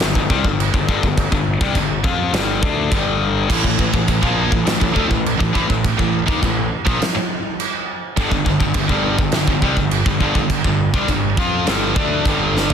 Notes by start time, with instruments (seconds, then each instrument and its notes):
0.00 picked electric bass G1, distorted electric guitar G2 D3, snare, china
0.15 picked electric bass G1, distorted electric guitar G2 D3, kick
0.30 picked electric bass C2, distorted electric guitar C3 G3, kick
0.45 picked electric bass G1, distorted electric guitar G2 D3, kick
0.60 china
0.74 picked electric bass G1, distorted electric guitar G2 D3, kick
0.89 picked electric bass G1, distorted electric guitar G2 D3, kick
1.03 picked electric bass G1, distorted electric guitar G2 D3, kick
1.18 kick, china
1.32 picked electric bass G1, distorted electric guitar G2 D3, kick
1.61 picked electric bass C2, distorted electric guitar C3 G3, kick
1.75 picked electric bass G1, distorted electric guitar G2 D3, kick, china
2.04 picked electric bass F2, distorted electric guitar F3 C4 F4, kick
2.33 picked electric bass G1, distorted electric guitar G2 D3 G3, snare, china
2.61 picked electric bass D2, distorted electric guitar D3 A3 D4, kick
2.91 picked electric bass G1, distorted electric guitar G2 D3 G3, kick, china
3.48 picked electric bass A1, distorted electric guitar A2 E3, kick, china, crash
3.64 picked electric bass A1, distorted electric guitar A2 E3, kick
3.79 picked electric bass A1, distorted electric guitar A2 E3, kick
3.93 picked electric bass A1, distorted electric guitar A2 E3, kick
4.08 picked electric bass A1, distorted electric guitar A2 E3, kick, china
4.22 picked electric bass A#1, distorted electric guitar A#2 F3 A#3, kick
4.52 picked electric bass A1, distorted electric guitar A2 E3, kick
4.65 picked electric bass A1, distorted electric guitar A2 E3, snare, china
4.80 picked electric bass A1, distorted electric guitar A2 E3, kick
4.94 picked electric bass D2, distorted electric guitar D3 A3, kick
5.09 picked electric bass A1, distorted electric guitar A2 E3, kick
5.26 china
5.39 picked electric bass A1, distorted electric guitar A2 E3, kick
5.53 picked electric bass A1, distorted electric guitar A2 E3, kick
5.67 picked electric bass A1, distorted electric guitar A2 E3, kick
5.84 kick, china
5.98 picked electric bass A1, distorted electric guitar A2 E3, kick
6.26 picked electric bass D#2, distorted electric guitar D#3 A#3, kick
6.41 picked electric bass A1, distorted electric guitar A2 E3, kick, china
6.86 picked electric bass A#1, distorted electric guitar A#2 F3, kick
7.01 muted picked electric bass stroke, muted distorted electric guitar stroke, snare, china
7.15 muted distorted electric guitar stroke, muted picked electric bass stroke
7.60 china
8.17 picked electric bass G1, distorted electric guitar G2 D3, kick, china
8.31 picked electric bass G1, distorted electric guitar G2 D3, kick
8.45 picked electric bass G1, distorted electric guitar G2 D3, kick
8.60 picked electric bass G1, distorted electric guitar G2 D3, kick
8.74 picked electric bass G1, distorted electric guitar G2 D3, kick, china
8.88 picked electric bass G1, distorted electric guitar G2 D3 G3, kick
9.18 picked electric bass G1, distorted electric guitar G2 D3, kick
9.32 picked electric bass G1, distorted electric guitar G2 D3, snare, china
9.47 picked electric bass G1, distorted electric guitar G2 D3, kick
9.62 picked electric bass C2, distorted electric guitar C3 G3, kick
9.77 picked electric bass G1, distorted electric guitar G2 D3, kick
9.91 china
10.06 picked electric bass G1, distorted electric guitar G2 D3, kick
10.20 picked electric bass G1, distorted electric guitar G2 D3, kick
10.35 picked electric bass G1, distorted electric guitar G2 D3, kick
10.50 kick, china
10.64 picked electric bass G1, distorted electric guitar G2 D3, kick
10.94 picked electric bass C2, distorted electric guitar C3 G3, kick
11.08 picked electric bass G1, distorted electric guitar G2 D3, kick, china
11.37 picked electric bass F2, distorted electric guitar F3 C4 F4, kick
11.65 picked electric bass G1, distorted electric guitar G2 D3 G3, snare, china
11.96 picked electric bass D2, distorted electric guitar D3 A3 D4, kick
12.25 picked electric bass G1, distorted electric guitar G2 D3 G3, kick, china
12.57 snare
12.70 floor tom